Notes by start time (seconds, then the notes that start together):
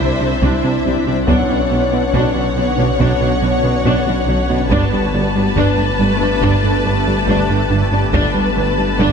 Already playing: C2 C4 D4 E4 C5 D5 E5, impact
0.00 C2
0.21 C3 D4
0.42 C2 C3 D4, taiko
0.64 C2 C3 D4
0.85 C2 C3 D4
1.06 C2 C3 D4
1.27 B1 B2 D3 B3 C#4 D4 F#4 C#5 F#5, taiko
1.49 B2 B3 D4
1.71 B1 B2 B3 D4
1.92 B2 B3 D4
2.13 B1 B2 D4, taiko
2.35 B2 D4
2.56 B1 B2 B3 D4
2.78 B2 D4
2.99 B1 B2 D4, taiko
3.20 B2 D4
3.42 B1 B2 D4
3.63 B2 B3 D4
3.85 B1 B2 D4, taiko
4.07 B2 D4
4.28 B1 B2 D4
4.49 B2 D4
4.70 G1 G2 A3 B3 D4 G4 B4 A5, taiko
4.92 G2 G3 D4
5.13 G1 G2 G3 D4
5.35 G2 G3 D4
5.56 G1 G2 A3 D4, taiko
5.78 G2 D4
5.99 G1 G2 G3 D4
6.21 G2 D4
6.42 G1 G2 D4, taiko
6.63 G2 D4
6.85 G1 G2 D4
7.07 G2 G3 D4
7.27 G1 G2 D4, taiko
7.49 G2 D4
7.70 G1 G2 D4
7.92 G2 D4
8.13 G1 G2 A3 B3 D4 G4 B4 A5, taiko
8.34 G2 G3 D4
8.56 G1 G2 G3 D4
8.77 G2 G3 D4
8.98 G1 G2 D4, taiko